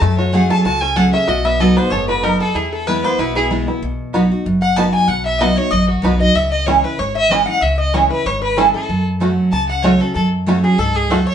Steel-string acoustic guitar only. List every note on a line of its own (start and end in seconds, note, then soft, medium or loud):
0.02 0.62 F#2 medium
0.33 0.63 F#3 medium
0.33 0.64 A3 medium
0.33 0.64 C#4 medium
0.33 0.64 G#4 loud
0.65 1.26 C#3 loud
0.96 1.13 F#3 medium
0.96 1.13 A3 medium
0.96 1.13 C#4 medium
0.96 1.12 G#4 loud
1.13 1.28 C#4 soft
1.13 1.27 G#4 medium
1.29 1.89 B2 medium
1.60 1.76 F#3 loud
1.60 1.77 B3 medium
1.60 1.77 D#4 medium
1.60 1.76 F#4 loud
1.77 1.92 D#4 soft
1.77 1.91 F#4 medium
1.93 2.23 G#2 medium
2.25 2.54 F#2 medium
2.56 3.16 E2 medium
2.88 3.04 E3 medium
2.88 3.04 G#3 medium
2.88 3.04 B3 medium
2.88 3.04 E4 medium
3.05 3.19 B3 soft
3.05 3.18 E4 medium
3.19 3.80 B2 medium
3.50 3.67 E3 medium
3.50 3.67 G#3 medium
3.50 3.67 B3 medium
3.50 3.66 E4 medium
3.67 3.82 B3 soft
3.67 3.81 E4 medium
3.83 4.43 B2 medium
4.14 4.30 F#3 medium
4.14 4.31 B3 medium
4.14 4.31 D#4 loud
4.14 4.30 F#4 loud
4.32 4.46 D#4 medium
4.32 4.45 F#4 medium
4.46 5.06 F#2 medium
4.76 5.07 F#3 medium
4.76 5.07 B3 medium
4.76 5.08 D#4 medium
4.76 5.08 F#4 medium
5.10 5.70 B2 medium
5.40 5.57 F#3 medium
5.40 5.57 B3 medium
5.40 5.58 D#4 medium
5.40 5.56 F#4 medium
5.57 5.72 D#4 soft
5.57 5.71 F#4 medium
5.71 6.32 F#2 medium
6.02 6.19 F#3 medium
6.02 6.20 B3 medium
6.02 6.20 D#4 medium
6.02 6.19 F#4 medium
6.20 6.35 D#4 medium
6.20 6.34 F#4 medium
6.35 6.96 C#3 medium
6.67 6.83 E3 medium
6.67 6.84 G#3 medium
6.67 6.84 C#4 loud
6.67 6.83 E4 medium
6.84 6.99 C#4 soft
6.84 6.98 E4 medium
6.99 7.59 G#2 medium
7.29 7.46 E3 medium
7.29 7.47 G#3 loud
7.29 7.47 C#4 medium
7.29 7.47 E4 medium
7.48 7.63 C#4 soft
7.48 7.62 E4 medium
7.63 8.23 C#3 medium
7.94 8.10 E3 medium
7.94 8.10 G#3 medium
7.94 8.11 C#4 medium
7.94 8.10 E4 medium
8.11 8.26 C#4 medium
8.11 8.25 E4 medium
8.26 8.86 G#2 medium
8.56 8.73 E3 medium
8.56 8.73 G#3 medium
8.56 8.74 C#4 medium
8.56 8.73 E4 medium
8.74 8.89 C#4 medium
8.74 8.88 E4 medium
8.90 9.49 F#2 medium
9.20 9.50 F#3 medium
9.20 9.51 A3 medium
9.20 9.51 C#4 medium
9.20 9.51 F#4 medium
9.53 10.13 C#3 medium
9.83 10.00 F#3 medium
9.83 10.00 A3 medium
9.83 10.00 C#4 medium
9.83 10.00 F#4 medium
10.01 10.16 C#4 soft
10.01 10.15 F#4 medium
10.15 10.76 F#2 medium
10.46 10.63 F#3 medium
10.46 10.63 A3 medium
10.46 10.64 C#4 loud
10.46 10.62 F#4 loud
10.64 10.78 C#4 medium
10.64 10.78 F#4 medium
10.78 11.08 G#2 loud
11.10 11.35 F#2 medium